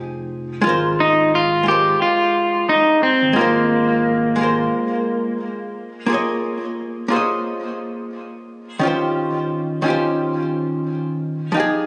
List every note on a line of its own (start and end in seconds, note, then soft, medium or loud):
0.00 0.59 F1 medium
0.00 0.59 F3 medium
0.00 0.61 D#4 medium
0.00 0.62 G4 medium
0.00 0.63 G#4 medium
0.61 1.62 G#3 medium
0.61 1.63 F4 medium
0.66 1.96 G#1 loud
0.66 1.64 A#4 medium
0.66 1.65 C5 medium
1.00 1.32 D#4 medium
1.35 1.68 F4 medium
1.63 3.32 G#3 medium
1.63 3.33 F4 medium
1.68 2.02 G4 loud
1.68 3.34 A#4 medium
1.68 3.36 C5 medium
2.02 2.66 F4 loud
2.69 3.03 D#4 medium
3.03 3.35 C4 medium
3.22 3.34 G#1 loud
3.33 4.34 G#3 medium
3.33 5.38 A#3 medium
3.33 4.35 F4 medium
3.38 4.68 G#1 medium
3.38 4.37 A#4 medium
3.38 4.38 C5 medium
4.36 6.05 G#3 medium
4.36 6.06 F4 medium
4.41 6.07 A#4 medium
4.41 6.08 C5 medium
6.06 7.07 A#3 medium
6.06 7.08 F4 medium
6.06 7.08 G#4 medium
6.13 7.10 C#5 medium
6.13 7.11 D#5 medium
7.08 8.77 A#3 medium
7.08 8.78 F4 medium
7.08 8.79 G#4 medium
7.13 8.80 C5 medium
7.13 8.80 C#5 medium
7.13 8.81 D#5 medium
8.79 9.80 D#3 medium
8.79 9.81 C#4 medium
8.79 9.82 F4 medium
8.85 9.83 G4 medium
8.85 9.84 C5 medium
9.82 11.50 D#3 medium
9.82 11.51 C#4 medium
9.82 11.52 F4 medium
9.88 11.53 G4 medium
9.88 11.54 C5 medium
11.52 11.86 F3 medium
11.52 11.86 D#4 medium
11.57 11.86 G4 medium
11.57 11.86 G#4 medium